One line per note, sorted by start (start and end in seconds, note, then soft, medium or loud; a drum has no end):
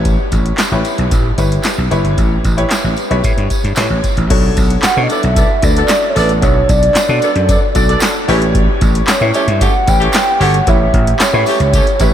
0.00 0.16 A1 loud
0.00 0.53 E4 medium
0.00 0.53 G4 medium
0.00 0.53 B4 medium
0.00 0.54 C#5 loud
0.05 kick loud
0.05 closed hi-hat medium
0.05 tambourine soft
0.32 0.51 A1 medium
0.32 kick medium
0.32 closed hi-hat medium
0.32 tambourine soft
0.46 closed hi-hat soft
0.58 snare loud
0.58 clap medium
0.58 closed hi-hat medium
0.58 tambourine medium
0.72 0.81 A1 medium
0.72 1.24 E4 medium
0.72 1.24 G4 medium
0.72 1.24 B4 medium
0.72 1.25 C#5 medium
0.84 closed hi-hat medium
0.84 tambourine soft
0.98 1.08 B1 medium
0.98 closed hi-hat medium
1.11 1.30 A1 medium
1.11 kick loud
1.11 closed hi-hat medium
1.11 tambourine medium
1.38 1.57 G1 loud
1.38 1.80 E4 medium
1.38 1.80 G4 medium
1.38 1.80 B4 medium
1.38 1.80 C#5 medium
1.38 kick medium
1.38 closed hi-hat medium
1.38 tambourine medium
1.52 closed hi-hat soft
1.63 snare loud
1.63 clap medium
1.63 closed hi-hat medium
1.63 tambourine medium
1.78 1.88 B1 medium
1.91 2.01 F#1 medium
1.91 2.43 E4 medium
1.91 2.43 G4 medium
1.91 2.44 B4 medium
1.91 2.44 C#5 loud
1.91 closed hi-hat medium
1.91 tambourine soft
2.04 2.14 G1 medium
2.04 closed hi-hat soft
2.17 2.37 A1 loud
2.17 kick loud
2.17 closed hi-hat medium
2.17 tambourine soft
2.44 2.63 A1 medium
2.44 kick medium
2.44 closed hi-hat medium
2.44 tambourine soft
2.57 2.99 E4 loud
2.57 2.99 G4 medium
2.57 3.00 B4 medium
2.57 3.00 C#5 loud
2.57 closed hi-hat soft
2.70 snare loud
2.70 clap medium
2.70 closed hi-hat medium
2.70 tambourine medium
2.84 2.94 A1 medium
2.96 closed hi-hat medium
2.96 tambourine soft
3.10 3.20 B1 medium
3.10 3.63 E4 medium
3.10 3.63 G4 medium
3.10 3.63 B4 medium
3.10 3.63 C#5 loud
3.10 closed hi-hat medium
3.24 3.33 A2 medium
3.24 kick loud
3.24 closed hi-hat medium
3.24 tambourine medium
3.38 3.47 G2 medium
3.38 closed hi-hat soft
3.50 kick medium
3.50 closed hi-hat medium
3.50 tambourine medium
3.64 3.73 G2 medium
3.64 closed hi-hat medium
3.76 3.87 A2 loud
3.76 4.19 E4 medium
3.76 4.19 G4 medium
3.76 4.19 B4 medium
3.76 4.19 C#5 medium
3.76 snare loud
3.76 clap medium
3.76 closed hi-hat medium
3.76 tambourine medium
3.90 4.00 A1 medium
4.04 kick medium
4.04 closed hi-hat medium
4.04 tambourine soft
4.17 4.27 A1 medium
4.17 closed hi-hat soft
4.29 4.49 B1 loud
4.29 4.82 D4 medium
4.29 4.82 F#4 medium
4.29 4.83 A4 medium
4.29 4.83 C#5 medium
4.29 kick loud
4.29 closed hi-hat medium
4.29 crash loud
4.57 4.76 B1 loud
4.57 kick medium
4.57 closed hi-hat medium
4.57 tambourine soft
4.70 closed hi-hat medium
4.83 5.02 F#5 loud
4.83 muted slap bass stroke soft
4.83 snare loud
4.83 clap loud
4.83 closed hi-hat medium
4.83 tambourine loud
4.96 5.06 B2 medium
4.96 5.49 D4 medium
4.96 5.49 F#4 medium
4.96 5.49 A4 medium
4.96 5.49 C#5 medium
5.04 5.12 D#5 medium
5.09 5.21 B3 medium
5.09 5.21 D4 medium
5.09 5.21 A4 medium
5.09 5.21 D5 loud
5.09 5.66 E5 loud
5.09 closed hi-hat medium
5.09 tambourine soft
5.23 5.42 B1 medium
5.23 closed hi-hat medium
5.36 5.47 B3 medium
5.36 5.47 D4 medium
5.36 5.47 A4 medium
5.36 5.47 D5 loud
5.36 kick loud
5.36 closed hi-hat loud
5.36 tambourine medium
5.62 5.82 D2 loud
5.62 6.25 D4 medium
5.62 6.26 F#4 medium
5.62 6.26 A4 medium
5.62 5.69 B4 medium
5.62 6.09 D5 loud
5.62 kick medium
5.62 closed hi-hat medium
5.62 tambourine medium
5.69 6.29 D5 medium
5.76 5.87 B3 medium
5.76 5.87 D4 medium
5.76 5.87 A4 medium
5.76 5.87 D5 medium
5.76 closed hi-hat medium
5.88 snare loud
5.88 clap loud
5.88 closed hi-hat medium
5.88 tambourine loud
6.10 6.18 C#5 medium
6.16 6.43 A1 loud
6.16 6.33 B3 medium
6.16 6.33 D4 medium
6.16 6.33 A4 medium
6.16 6.42 B4 loud
6.16 6.33 D5 loud
6.16 open hi-hat medium
6.16 tambourine soft
6.29 closed hi-hat medium
6.41 6.61 B1 loud
6.41 6.94 D4 medium
6.41 6.94 F#4 medium
6.41 6.95 A4 medium
6.41 6.95 C#5 medium
6.41 6.71 C#5 loud
6.41 kick loud
6.41 closed hi-hat medium
6.41 tambourine soft
6.69 6.88 B1 loud
6.69 8.28 D5 loud
6.69 kick medium
6.69 closed hi-hat medium
6.69 tambourine soft
6.83 closed hi-hat medium
6.95 muted slap bass stroke soft
6.95 snare loud
6.95 clap loud
6.95 closed hi-hat loud
6.95 tambourine loud
7.08 7.18 B2 loud
7.08 7.61 D4 medium
7.08 7.61 F#4 medium
7.08 7.61 A4 medium
7.08 7.61 D5 medium
7.22 7.33 B3 medium
7.22 7.33 D4 medium
7.22 7.34 A4 medium
7.22 7.33 D5 loud
7.22 closed hi-hat medium
7.22 tambourine soft
7.36 7.54 F#2 medium
7.36 closed hi-hat medium
7.48 7.60 B3 medium
7.48 7.60 D4 medium
7.48 7.60 A4 medium
7.48 7.60 D5 medium
7.48 kick loud
7.48 closed hi-hat loud
7.48 tambourine medium
7.75 7.94 B1 medium
7.75 8.28 D4 medium
7.75 8.28 F#4 medium
7.75 8.28 A4 medium
7.75 8.29 D5 loud
7.75 kick medium
7.75 closed hi-hat medium
7.75 tambourine medium
7.88 8.00 B3 medium
7.88 8.00 D4 medium
7.88 8.00 A4 medium
7.88 8.00 D5 loud
7.88 closed hi-hat medium
8.00 snare loud
8.00 clap medium
8.00 closed hi-hat loud
8.00 tambourine loud
8.28 8.66 A1 loud
8.28 8.45 A3 medium
8.28 8.45 C#4 medium
8.28 9.02 E4 loud
8.28 9.03 G4 loud
8.28 8.45 G4 loud
8.28 9.03 B4 loud
8.28 8.45 C#5 loud
8.28 9.03 C#5 loud
8.28 open hi-hat medium
8.28 tambourine soft
8.42 closed hi-hat medium
8.55 kick loud
8.55 closed hi-hat medium
8.81 9.00 A1 loud
8.81 kick medium
8.81 closed hi-hat medium
8.81 tambourine soft
8.95 closed hi-hat medium
9.08 9.37 C#5 loud
9.08 muted slap bass stroke soft
9.08 snare loud
9.08 clap loud
9.08 closed hi-hat loud
9.08 tambourine loud
9.21 9.31 A2 medium
9.21 9.74 E4 medium
9.21 9.74 G4 medium
9.21 9.74 B4 medium
9.21 9.74 C#5 medium
9.34 9.45 A3 medium
9.34 9.45 C#4 loud
9.34 9.45 G4 medium
9.34 9.45 C#5 loud
9.34 9.64 E5 loud
9.34 closed hi-hat medium
9.34 tambourine soft
9.48 9.67 G2 loud
9.48 closed hi-hat medium
9.61 9.72 A3 medium
9.61 9.72 C#4 medium
9.61 9.72 G4 medium
9.61 9.72 C#5 medium
9.61 9.90 F#5 loud
9.61 kick loud
9.61 closed hi-hat loud
9.61 tambourine medium
9.87 10.07 A1 loud
9.87 10.50 E4 medium
9.87 10.51 G4 medium
9.87 10.51 B4 medium
9.87 10.51 C#5 medium
9.87 10.44 G5 loud
9.87 kick loud
9.87 closed hi-hat medium
9.87 tambourine medium
10.00 10.12 A3 medium
10.00 10.12 C#4 medium
10.00 10.12 G4 medium
10.00 10.12 C#5 loud
10.00 closed hi-hat medium
10.13 snare loud
10.13 clap medium
10.13 closed hi-hat medium
10.13 tambourine loud
10.40 10.59 G1 medium
10.40 10.57 A3 medium
10.40 10.57 C#4 loud
10.40 10.57 G4 medium
10.40 10.57 C#5 loud
10.40 10.70 F#5 loud
10.40 open hi-hat medium
10.40 tambourine soft
10.54 closed hi-hat soft
10.67 10.86 A1 loud
10.67 11.20 E4 medium
10.67 11.20 G4 medium
10.67 11.20 B4 medium
10.67 11.20 C#5 medium
10.67 11.21 E5 loud
10.67 kick loud
10.67 closed hi-hat medium
10.67 tambourine soft
10.94 11.13 A1 loud
10.94 kick medium
10.94 closed hi-hat medium
11.07 closed hi-hat medium
11.20 12.14 C#5 medium
11.20 snare loud
11.20 clap loud
11.20 closed hi-hat medium
11.20 tambourine loud
11.33 11.43 A2 medium
11.33 11.86 E4 medium
11.33 11.86 G4 medium
11.33 11.86 B4 medium
11.33 11.86 C#5 medium
11.46 11.58 A3 medium
11.46 11.58 C#4 medium
11.46 11.58 G4 medium
11.46 11.58 C#5 loud
11.46 open hi-hat medium
11.46 tambourine soft
11.60 11.79 C#2 medium
11.60 closed hi-hat medium
11.73 11.84 A3 medium
11.73 11.84 C#4 medium
11.73 11.84 G4 medium
11.73 11.84 C#5 medium
11.73 kick loud
11.73 closed hi-hat loud
11.73 tambourine medium
11.87 closed hi-hat soft
11.99 12.14 A1 medium
11.99 12.14 E4 medium
11.99 12.14 G4 medium
11.99 12.14 B4 medium
11.99 12.14 C#5 medium
11.99 kick medium
11.99 closed hi-hat medium
11.99 tambourine medium